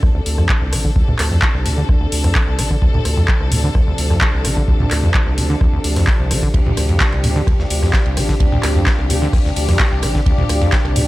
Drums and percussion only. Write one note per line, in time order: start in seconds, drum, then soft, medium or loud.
0.03 kick loud
0.03 cross-stick medium
0.26 open hi-hat loud
0.38 cross-stick soft
0.49 kick loud
0.49 clap loud
0.73 cross-stick medium
0.73 open hi-hat loud
0.85 kick medium
0.96 kick loud
1.08 mid tom medium
1.19 cross-stick medium
1.19 clap medium
1.19 open hi-hat loud
1.42 kick loud
1.42 clap loud
1.55 cross-stick soft
1.66 open hi-hat loud
1.89 kick loud
1.89 cross-stick medium
2.12 open hi-hat loud
2.24 cross-stick soft
2.24 open hi-hat medium
2.35 kick loud
2.35 clap loud
2.59 cross-stick medium
2.59 open hi-hat loud
2.71 kick medium
2.82 kick loud
2.94 mid tom medium
3.05 cross-stick medium
3.05 open hi-hat loud
3.28 kick loud
3.28 clap loud
3.41 cross-stick soft
3.52 mid tom medium
3.52 open hi-hat loud
3.75 kick loud
3.75 cross-stick medium
3.98 open hi-hat loud
4.10 cross-stick soft
4.21 kick loud
4.21 clap loud
4.45 cross-stick medium
4.45 open hi-hat loud
4.57 kick medium
4.68 kick loud
4.80 mid tom medium
4.91 cross-stick medium
4.91 clap medium
4.91 open hi-hat loud
5.14 kick loud
5.14 clap loud
5.27 cross-stick soft
5.38 open hi-hat loud
5.61 kick loud
5.61 cross-stick medium
5.84 open hi-hat loud
5.96 cross-stick soft
5.96 open hi-hat medium
6.07 kick loud
6.07 clap loud
6.31 cross-stick medium
6.31 open hi-hat loud
6.43 kick medium
6.54 kick loud
6.54 ride medium
6.66 mid tom loud
6.77 cross-stick medium
6.77 open hi-hat loud
6.77 ride medium
6.89 ride soft
7.00 kick loud
7.00 snare loud
7.00 clap loud
7.00 ride medium
7.12 cross-stick soft
7.12 ride soft
7.24 mid tom medium
7.24 open hi-hat loud
7.24 ride medium
7.47 kick loud
7.47 cross-stick medium
7.47 ride medium
7.59 snare soft
7.70 open hi-hat loud
7.70 ride medium
7.83 cross-stick soft
7.83 snare soft
7.93 kick loud
7.93 snare loud
7.93 clap loud
7.93 ride medium
8.06 ride soft
8.17 cross-stick medium
8.17 snare soft
8.17 open hi-hat loud
8.17 ride medium
8.29 kick medium
8.29 snare medium
8.40 kick loud
8.40 ride medium
8.52 mid tom medium
8.63 cross-stick medium
8.63 clap medium
8.63 open hi-hat loud
8.63 ride medium
8.86 kick loud
8.86 snare loud
8.86 clap loud
8.86 ride medium
8.99 cross-stick soft
9.10 open hi-hat loud
9.10 ride medium
9.33 kick loud
9.33 cross-stick medium
9.33 open hi-hat medium
9.45 snare soft
9.56 open hi-hat loud
9.56 ride medium
9.68 cross-stick soft
9.68 snare soft
9.68 open hi-hat medium
9.79 kick loud
9.79 snare loud
9.79 clap loud
9.79 ride medium
10.02 cross-stick medium
10.02 open hi-hat loud
10.02 ride medium
10.15 kick medium
10.15 snare soft
10.26 kick loud
10.26 ride medium
10.38 mid tom medium
10.49 cross-stick medium
10.49 open hi-hat loud
10.49 ride medium
10.61 ride soft
10.72 kick loud
10.72 snare loud
10.72 clap loud
10.72 ride medium
10.85 cross-stick soft
10.85 ride soft
10.96 mid tom medium
10.96 open hi-hat loud
10.96 ride medium